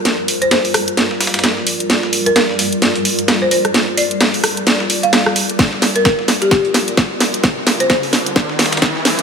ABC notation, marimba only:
X:1
M:4/4
L:1/16
Q:"Swing 16ths" 1/4=130
K:Gm
V:1 name="Marimba"
z3 c c z8 z3 | z3 B B z8 c c z | z2 d z8 f4- f- | f z2 B B z2 G z8 |
z3 c c z8 z3 |]